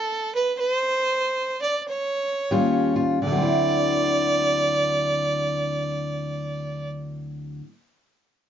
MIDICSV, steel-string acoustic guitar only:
0, 0, Header, 1, 2, 480
1, 0, Start_track
1, 0, Tempo, 627615
1, 410, Time_signature, 4, 2, 24, 8
1, 895, Tempo, 666667
1, 1855, Tempo, 721154
1, 5844, End_track
2, 0, Start_track
2, 0, Title_t, "Steel-string acoustic guitar"
2, 0, Program_c, 0, 25
2, 1859, Note_on_c, 0, 39, 72
2, 1860, Note_on_c, 0, 55, 62
2, 1866, Note_on_c, 0, 61, 66
2, 1867, Note_on_c, 0, 65, 65
2, 2150, Note_off_c, 0, 65, 0
2, 2158, Note_on_c, 0, 65, 71
2, 2305, Note_off_c, 0, 65, 0
2, 2308, Note_off_c, 0, 39, 0
2, 2309, Note_off_c, 0, 55, 0
2, 2310, Note_off_c, 0, 61, 0
2, 2332, Note_on_c, 0, 38, 72
2, 2364, Note_on_c, 0, 50, 62
2, 2399, Note_on_c, 0, 54, 62
2, 2425, Note_on_c, 0, 60, 62
2, 2466, Note_on_c, 0, 64, 59
2, 5253, Note_off_c, 0, 38, 0
2, 5270, Note_off_c, 0, 50, 0
2, 5287, Note_off_c, 0, 54, 0
2, 5300, Note_off_c, 0, 60, 0
2, 5320, Note_off_c, 0, 64, 0
2, 5844, End_track
0, 0, End_of_file